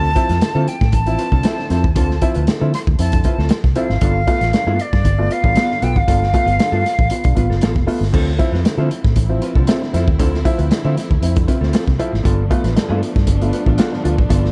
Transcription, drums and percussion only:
0.16 kick, closed hi-hat
0.29 snare, closed hi-hat
0.41 snare, closed hi-hat
0.68 closed hi-hat
0.81 kick, snare
0.92 kick, closed hi-hat
1.06 closed hi-hat
1.19 closed hi-hat
1.32 kick
1.43 snare, closed hi-hat
1.59 snare
1.70 snare, closed hi-hat
1.84 kick
1.96 kick, closed hi-hat
2.11 snare
2.22 kick, closed hi-hat
2.34 closed hi-hat
2.47 snare, closed hi-hat
2.74 snare, closed hi-hat
2.87 kick
2.99 closed hi-hat
3.12 kick, closed hi-hat
3.24 kick, closed hi-hat
3.39 snare
3.49 snare, closed hi-hat
3.64 kick, snare
3.75 closed hi-hat
3.90 snare
4.01 kick, closed hi-hat
4.28 kick, closed hi-hat
4.41 snare, closed hi-hat
4.53 snare, closed hi-hat
4.79 closed hi-hat
4.93 kick, snare
5.05 kick, closed hi-hat
5.31 closed hi-hat
5.44 kick
5.56 snare, closed hi-hat
5.71 snare
5.82 closed hi-hat
5.96 kick
6.08 kick, closed hi-hat
6.23 snare
6.34 kick, closed hi-hat
6.47 closed hi-hat
6.59 snare, closed hi-hat
6.86 snare, closed hi-hat
6.99 kick
7.10 closed hi-hat
7.24 kick, closed hi-hat
7.37 kick, closed hi-hat
7.51 snare
7.61 snare, closed hi-hat
7.76 kick, snare
7.88 open hi-hat
8.03 snare
8.14 kick, crash
8.39 kick, closed hi-hat
8.54 snare
8.65 snare, closed hi-hat
8.91 closed hi-hat
9.04 kick, snare
9.16 kick, closed hi-hat
9.42 closed hi-hat
9.55 kick
9.67 snare, closed hi-hat
9.82 snare
9.94 snare, closed hi-hat
10.08 kick
10.20 kick, closed hi-hat
10.34 snare
10.45 kick, closed hi-hat
10.59 closed hi-hat
10.71 snare, closed hi-hat
10.97 snare, closed hi-hat
11.11 kick
11.23 closed hi-hat
11.36 kick, closed hi-hat
11.48 kick, closed hi-hat
11.63 snare
11.73 snare, closed hi-hat
11.88 kick, snare
12.00 closed hi-hat
12.14 snare
12.25 kick, closed hi-hat
12.51 kick, closed hi-hat
12.64 snare, closed hi-hat
12.77 snare, closed hi-hat
13.03 closed hi-hat
13.16 kick, snare
13.27 kick, closed hi-hat
13.41 closed hi-hat
13.53 closed hi-hat
13.66 kick
13.78 snare, closed hi-hat
13.93 snare
14.05 closed hi-hat
14.18 kick
14.30 kick, closed hi-hat
14.45 snare

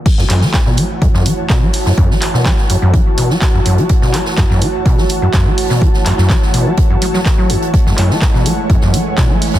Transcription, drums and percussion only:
0.06 kick, closed hi-hat, crash
0.18 snare
0.30 clap, closed hi-hat, open hi-hat
0.41 snare
0.54 kick, snare, clap, closed hi-hat
0.66 snare
0.77 closed hi-hat, open hi-hat
1.02 kick, closed hi-hat
1.14 snare
1.26 closed hi-hat, open hi-hat
1.50 kick, snare, clap, closed hi-hat
1.73 open hi-hat
1.86 snare
1.98 kick, closed hi-hat
2.11 snare
2.22 clap, closed hi-hat, open hi-hat
2.34 snare
2.45 kick, snare, clap, closed hi-hat
2.58 snare
2.70 closed hi-hat, open hi-hat
2.94 kick, closed hi-hat
3.18 closed hi-hat, open hi-hat
3.30 snare
3.41 kick, snare, clap, closed hi-hat
3.66 closed hi-hat, open hi-hat
3.78 closed hi-hat
3.89 kick, closed hi-hat
4.02 snare
4.14 clap, closed hi-hat, open hi-hat
4.26 snare
4.37 kick, snare, clap, closed hi-hat
4.51 snare
4.61 closed hi-hat, open hi-hat
4.86 kick, closed hi-hat
4.98 snare
5.09 closed hi-hat, open hi-hat
5.33 kick, snare, clap, closed hi-hat
5.58 open hi-hat
5.70 snare
5.82 kick, closed hi-hat
5.94 snare
6.06 clap, closed hi-hat, open hi-hat
6.18 snare
6.30 kick, snare, clap, closed hi-hat
6.42 snare
6.54 closed hi-hat, open hi-hat
6.77 kick, closed hi-hat
7.02 closed hi-hat, open hi-hat
7.14 snare
7.26 kick, snare, clap, closed hi-hat
7.50 closed hi-hat, open hi-hat
7.62 closed hi-hat
7.74 kick, closed hi-hat
7.87 snare
7.98 clap, closed hi-hat, open hi-hat
8.11 snare
8.22 kick, snare, clap, closed hi-hat
8.34 snare
8.46 closed hi-hat, open hi-hat
8.70 kick, closed hi-hat
8.81 snare
8.94 closed hi-hat, open hi-hat
9.17 kick, snare, clap, closed hi-hat
9.42 open hi-hat
9.54 snare

